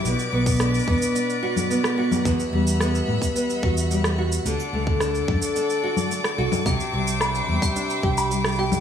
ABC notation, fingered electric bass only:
X:1
M:4/4
L:1/8
Q:1/4=109
K:Em
V:1 name="Fingered electric bass" clef=bass
B,,, B,,,2 E,, z4 | E,, E,,2 A,, z E,,3 | D,, D,,2 F,, z3 C,, | C,, C,,2 E,, z C,,3 |]